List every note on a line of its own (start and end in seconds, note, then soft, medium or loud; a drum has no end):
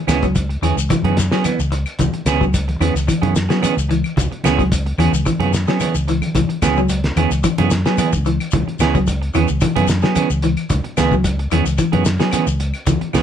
0.07 0.57 C#2 medium
0.07 0.25 E3 medium
0.07 0.25 B3 medium
0.07 0.25 C#4 medium
0.07 0.25 G#4 medium
0.07 snare medium
0.07 closed hi-hat soft
0.07 high conga medium
0.07 claves medium
0.07 shekere medium
0.23 0.44 F#3 medium
0.23 kick medium
0.23 closed hi-hat soft
0.23 shekere soft
0.35 muted clean electric guitar stroke soft
0.35 kick medium
0.35 closed hi-hat medium
0.35 shekere medium
0.49 muted clean electric guitar stroke soft
0.49 closed hi-hat soft
0.62 0.75 E2 medium
0.62 0.77 E3 medium
0.62 0.83 E3 medium
0.62 0.76 C#4 medium
0.62 0.76 G#4 medium
0.62 muted clean electric guitar stroke medium
0.62 closed hi-hat medium
0.62 high conga medium
0.62 claves medium
0.62 shekere soft
0.76 0.88 C#2 medium
0.76 muted clean electric guitar stroke soft
0.76 shekere medium
0.90 1.11 E3 medium
0.90 muted clean electric guitar stroke soft
0.90 kick medium
0.90 closed hi-hat medium
0.90 low conga medium
0.90 claves medium
0.90 shekere medium
1.03 1.28 F#2 medium
1.03 1.17 E3 medium
1.03 1.17 B3 medium
1.03 1.17 C#4 medium
1.03 1.17 G#4 medium
1.03 closed hi-hat soft
1.03 high conga medium
1.03 low conga medium
1.17 muted clean electric guitar stroke soft
1.17 snare medium
1.17 closed hi-hat medium
1.17 shekere medium
1.31 1.53 F#3 medium
1.31 1.44 B3 soft
1.31 1.45 C#4 soft
1.31 1.44 G#4 medium
1.31 snare medium
1.31 shekere soft
1.44 1.59 E3 medium
1.44 1.59 B3 medium
1.44 muted clean electric guitar stroke medium
1.44 closed hi-hat medium
1.44 high conga medium
1.44 claves medium
1.44 shekere medium
1.59 1.83 C#2 medium
1.59 muted clean electric guitar stroke soft
1.59 shekere medium
1.72 muted clean electric guitar stroke soft
1.72 closed hi-hat soft
1.72 shekere soft
1.86 closed hi-hat soft
1.86 claves medium
1.99 2.12 C#2 medium
1.99 2.20 E3 medium
1.99 kick medium
1.99 closed hi-hat medium
1.99 low conga medium
1.99 shekere medium
2.14 muted clean electric guitar stroke soft
2.14 closed hi-hat soft
2.25 2.75 C#2 medium
2.25 2.44 B3 medium
2.25 2.44 C#4 medium
2.25 2.44 G#4 medium
2.25 snare medium
2.25 closed hi-hat medium
2.25 high conga medium
2.25 claves medium
2.25 shekere medium
2.41 2.62 F#3 medium
2.41 kick medium
2.41 shekere soft
2.54 muted clean electric guitar stroke soft
2.54 kick medium
2.54 closed hi-hat medium
2.54 shekere medium
2.68 muted clean electric guitar stroke soft
2.68 closed hi-hat soft
2.68 high conga medium
2.80 2.93 E2 medium
2.80 2.95 E3 medium
2.80 3.02 E3 medium
2.80 2.95 B3 medium
2.80 2.94 C#4 medium
2.80 2.94 G#4 medium
2.80 closed hi-hat medium
2.80 high conga medium
2.80 claves medium
2.80 shekere soft
2.94 3.06 C#2 medium
2.94 muted clean electric guitar stroke soft
2.94 closed hi-hat soft
2.94 shekere medium
3.07 3.29 E3 medium
3.07 muted clean electric guitar stroke soft
3.07 kick medium
3.07 closed hi-hat medium
3.07 high conga medium
3.07 claves medium
3.07 shekere medium
3.22 3.47 F#2 medium
3.22 3.34 E3 medium
3.22 3.34 B3 medium
3.22 3.35 C#4 medium
3.22 3.35 G#4 medium
3.22 closed hi-hat soft
3.22 high conga medium
3.22 low conga medium
3.36 muted clean electric guitar stroke soft
3.36 snare medium
3.36 closed hi-hat medium
3.36 shekere medium
3.49 3.71 F#3 medium
3.49 3.61 B3 soft
3.49 3.61 C#4 soft
3.49 3.62 G#4 medium
3.49 snare medium
3.49 closed hi-hat soft
3.49 shekere soft
3.61 3.76 E3 medium
3.61 3.76 B3 medium
3.61 3.76 C#4 medium
3.61 3.75 G#4 medium
3.61 closed hi-hat medium
3.61 high conga medium
3.61 claves medium
3.61 shekere medium
3.76 4.02 C#2 medium
3.76 muted clean electric guitar stroke medium
3.76 shekere medium
3.89 4.11 E3 medium
3.89 muted clean electric guitar stroke soft
3.89 closed hi-hat soft
3.89 shekere soft
4.04 closed hi-hat soft
4.04 claves medium
4.17 4.30 C#2 loud
4.17 muted clean electric guitar stroke medium
4.17 kick medium
4.17 closed hi-hat medium
4.17 low conga medium
4.17 shekere medium
4.32 muted clean electric guitar stroke soft
4.32 closed hi-hat soft
4.44 4.93 C#2 medium
4.44 4.61 E3 medium
4.44 4.61 B3 medium
4.44 4.62 C#4 medium
4.44 4.62 G#4 medium
4.44 snare medium
4.44 closed hi-hat soft
4.44 high conga medium
4.44 claves medium
4.44 shekere medium
4.59 4.79 F#3 medium
4.59 kick medium
4.59 closed hi-hat soft
4.59 shekere soft
4.72 muted clean electric guitar stroke soft
4.72 kick medium
4.72 closed hi-hat medium
4.72 shekere medium
4.86 muted clean electric guitar stroke soft
4.86 closed hi-hat soft
4.98 5.11 E2 medium
4.98 5.13 E3 medium
4.98 5.20 E3 medium
4.98 5.13 B3 medium
4.98 5.13 C#4 medium
4.98 5.12 G#4 medium
4.98 closed hi-hat medium
4.98 high conga medium
4.98 claves medium
4.98 shekere soft
5.13 5.25 C#2 medium
5.13 muted clean electric guitar stroke soft
5.13 shekere medium
5.25 5.47 E3 medium
5.25 muted clean electric guitar stroke soft
5.25 kick medium
5.25 closed hi-hat medium
5.25 high conga medium
5.25 claves medium
5.25 shekere medium
5.39 5.64 F#2 loud
5.39 5.52 E3 medium
5.39 5.52 B3 medium
5.39 5.53 C#4 medium
5.39 5.53 G#4 medium
5.39 closed hi-hat soft
5.39 high conga medium
5.39 low conga medium
5.53 muted clean electric guitar stroke soft
5.53 snare medium
5.53 closed hi-hat soft
5.53 shekere medium
5.67 5.89 F#3 medium
5.67 5.79 B3 soft
5.67 5.80 C#4 medium
5.67 5.80 G#4 soft
5.67 snare medium
5.67 shekere soft
5.80 5.95 E3 medium
5.80 5.95 B3 medium
5.80 5.94 C#4 medium
5.80 5.94 G#4 medium
5.80 closed hi-hat medium
5.80 high conga medium
5.80 claves medium
5.80 shekere medium
5.94 6.19 C#2 medium
5.94 muted clean electric guitar stroke medium
5.94 shekere medium
6.08 6.29 E3 medium
6.08 muted clean electric guitar stroke soft
6.08 closed hi-hat soft
6.08 shekere soft
6.22 closed hi-hat soft
6.22 high conga medium
6.22 claves medium
6.35 6.48 C#2 medium
6.35 6.56 E3 medium
6.35 kick medium
6.35 closed hi-hat medium
6.35 low conga medium
6.35 shekere medium
6.49 muted clean electric guitar stroke soft
6.49 closed hi-hat soft
6.62 7.11 C#2 medium
6.62 6.79 E3 medium
6.62 6.79 B3 medium
6.62 6.79 C#4 medium
6.62 6.80 G#4 medium
6.62 kick medium
6.62 snare medium
6.62 closed hi-hat medium
6.62 high conga medium
6.62 claves medium
6.62 shekere medium
6.77 6.98 F#3 medium
6.77 shekere soft
6.89 muted clean electric guitar stroke soft
6.89 closed hi-hat medium
6.89 shekere medium
7.04 muted clean electric guitar stroke soft
7.04 snare medium
7.04 closed hi-hat soft
7.16 7.29 E2 medium
7.16 7.31 E3 medium
7.16 7.38 E3 medium
7.16 7.31 B3 medium
7.16 7.31 C#4 medium
7.16 7.30 G#4 medium
7.16 closed hi-hat medium
7.16 high conga medium
7.16 claves medium
7.16 shekere soft
7.31 7.42 C#2 medium
7.31 muted clean electric guitar stroke soft
7.31 closed hi-hat soft
7.31 shekere medium
7.44 7.65 E3 medium
7.44 muted clean electric guitar stroke soft
7.44 kick medium
7.44 closed hi-hat medium
7.44 high conga medium
7.44 claves medium
7.44 shekere medium
7.58 7.83 F#2 medium
7.58 7.70 E3 medium
7.58 7.70 B3 medium
7.58 7.70 C#4 medium
7.58 7.71 G#4 medium
7.58 closed hi-hat soft
7.58 high conga medium
7.58 low conga medium
7.71 muted clean electric guitar stroke soft
7.71 snare medium
7.71 closed hi-hat medium
7.71 shekere medium
7.85 8.07 F#3 medium
7.85 7.97 B3 soft
7.85 7.98 C#4 soft
7.85 7.98 G#4 soft
7.85 snare medium
7.85 closed hi-hat soft
7.85 shekere soft
7.98 8.13 E3 medium
7.98 8.12 B3 medium
7.98 8.11 G#4 medium
7.98 muted clean electric guitar stroke medium
7.98 closed hi-hat medium
7.98 high conga medium
7.98 claves medium
7.98 shekere medium
8.13 8.37 C#2 medium
8.13 muted clean electric guitar stroke soft
8.13 kick medium
8.13 shekere medium
8.25 8.46 E3 medium
8.25 muted clean electric guitar stroke soft
8.25 closed hi-hat soft
8.25 shekere soft
8.40 closed hi-hat soft
8.40 claves medium
8.51 8.66 C#2 medium
8.51 8.74 E3 medium
8.51 kick medium
8.51 closed hi-hat medium
8.51 low conga medium
8.51 shekere medium
8.68 muted clean electric guitar stroke soft
8.68 closed hi-hat soft
8.79 9.29 C#2 medium
8.79 8.97 E3 medium
8.79 8.97 B3 medium
8.79 8.97 C#4 medium
8.79 8.97 G#4 medium
8.79 snare medium
8.79 closed hi-hat soft
8.79 high conga medium
8.79 claves medium
8.79 shekere medium
8.94 9.15 F#3 medium
8.94 kick medium
8.94 closed hi-hat soft
8.94 shekere soft
9.07 muted clean electric guitar stroke soft
9.07 kick medium
9.07 closed hi-hat medium
9.07 shekere medium
9.22 muted clean electric guitar stroke soft
9.22 closed hi-hat soft
9.34 9.47 E2 medium
9.34 9.48 E3 medium
9.34 9.55 E3 medium
9.34 9.48 B3 medium
9.34 9.48 C#4 medium
9.34 9.47 G#4 medium
9.34 closed hi-hat medium
9.34 high conga medium
9.34 claves medium
9.34 shekere soft
9.48 9.61 C#2 medium
9.48 muted clean electric guitar stroke medium
9.48 shekere medium
9.61 9.83 E3 medium
9.61 muted clean electric guitar stroke soft
9.61 kick medium
9.61 closed hi-hat medium
9.61 low conga medium
9.61 claves medium
9.61 shekere medium
9.76 10.01 F#2 medium
9.76 9.87 E3 medium
9.76 9.87 B3 medium
9.76 9.88 C#4 medium
9.76 9.88 G#4 medium
9.76 closed hi-hat soft
9.76 high conga medium
9.76 low conga medium
9.88 muted clean electric guitar stroke soft
9.88 snare medium
9.88 closed hi-hat soft
9.88 shekere medium
10.02 10.24 F#3 medium
10.02 10.14 B3 soft
10.02 10.15 C#4 soft
10.02 10.15 G#4 medium
10.02 snare medium
10.02 shekere soft
10.15 10.30 E3 medium
10.15 10.29 B3 medium
10.15 10.29 C#4 medium
10.15 10.29 G#4 medium
10.15 closed hi-hat medium
10.15 high conga medium
10.15 claves medium
10.15 shekere medium
10.30 10.54 C#2 medium
10.30 muted clean electric guitar stroke soft
10.30 shekere medium
10.42 10.64 E3 medium
10.42 muted clean electric guitar stroke soft
10.42 closed hi-hat soft
10.42 shekere soft
10.57 closed hi-hat soft
10.57 claves medium
10.70 10.83 C#2 medium
10.70 muted clean electric guitar stroke medium
10.70 kick medium
10.70 closed hi-hat medium
10.70 low conga medium
10.70 shekere medium
10.84 muted clean electric guitar stroke soft
10.84 closed hi-hat soft
10.97 11.46 C#2 medium
10.97 11.14 E3 medium
10.97 11.14 B3 medium
10.97 11.14 G#4 medium
10.97 muted clean electric guitar stroke medium
10.97 snare medium
10.97 closed hi-hat medium
10.97 high conga medium
10.97 claves medium
10.97 shekere medium
11.12 11.32 F#3 medium
11.12 kick medium
11.12 shekere soft
11.24 muted clean electric guitar stroke soft
11.24 kick medium
11.24 closed hi-hat medium
11.24 shekere medium
11.39 muted clean electric guitar stroke soft
11.39 closed hi-hat soft
11.51 11.64 E2 medium
11.51 11.66 E3 medium
11.51 11.72 E3 medium
11.51 11.65 B3 medium
11.51 11.65 C#4 medium
11.51 11.64 G#4 medium
11.51 closed hi-hat medium
11.51 high conga medium
11.51 claves medium
11.51 shekere soft
11.65 11.77 C#2 medium
11.65 muted clean electric guitar stroke soft
11.65 closed hi-hat soft
11.65 shekere medium
11.78 11.99 E3 medium
11.78 muted clean electric guitar stroke soft
11.78 kick medium
11.78 closed hi-hat medium
11.78 claves medium
11.78 shekere medium
11.92 12.17 F#2 medium
11.92 12.04 E3 medium
11.92 12.04 B3 medium
11.92 12.04 C#4 medium
11.92 12.04 G#4 medium
11.92 closed hi-hat soft
11.92 high conga medium
11.92 low conga medium
12.05 muted clean electric guitar stroke soft
12.05 snare medium
12.05 closed hi-hat medium
12.05 shekere medium
12.19 12.40 F#3 medium
12.19 12.32 B3 soft
12.19 12.33 C#4 soft
12.19 12.32 G#4 medium
12.19 snare medium
12.19 closed hi-hat soft
12.19 shekere soft
12.32 12.47 E3 medium
12.32 12.47 B3 medium
12.32 12.46 C#4 medium
12.32 12.46 G#4 medium
12.32 closed hi-hat medium
12.32 high conga medium
12.32 claves medium
12.32 shekere medium
12.47 12.71 C#2 medium
12.47 muted clean electric guitar stroke medium
12.47 shekere medium
12.60 muted clean electric guitar stroke soft
12.60 closed hi-hat soft
12.60 shekere soft
12.74 closed hi-hat soft
12.74 claves medium
12.87 13.00 C#2 loud
12.87 13.07 E3 medium
12.87 kick medium
12.87 closed hi-hat medium
12.87 low conga medium
12.87 shekere medium
13.01 muted clean electric guitar stroke soft
13.01 closed hi-hat soft
13.13 13.23 C#2 medium
13.13 13.23 E3 medium
13.13 13.23 B3 medium
13.13 13.23 C#4 medium
13.13 13.23 G#4 medium
13.13 snare medium
13.13 closed hi-hat medium
13.13 high conga medium
13.13 claves medium
13.13 shekere medium